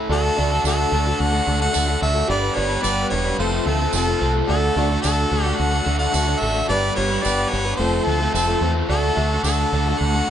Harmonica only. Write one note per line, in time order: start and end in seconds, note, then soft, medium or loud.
0.12 0.62 A4 loud
0.67 1.22 A4 loud
1.21 1.61 F#5 loud
1.62 2.00 F#5 loud
2.02 2.28 E5 loud
2.30 2.57 D5 loud
2.55 2.82 C#5 loud
2.83 3.09 D5 loud
3.10 3.37 C#5 medium
3.39 3.68 C5 medium
3.67 3.94 A4 medium
3.95 4.33 A4 loud
4.48 5.00 A4 loud
5.02 5.43 A4 loud
5.43 5.59 G4 loud
5.57 5.98 F#5 loud
5.99 6.41 F#5 loud
6.40 6.68 E5 medium
6.69 6.95 D5 loud
6.96 7.24 C#5 medium
7.23 7.51 D5 loud
7.49 7.76 C#5 medium
7.76 8.06 C5 medium
8.05 8.34 A4 medium
8.34 8.73 A4 medium
8.89 9.41 A4 medium
9.44 9.99 A4 medium
9.98 10.30 F#5 loud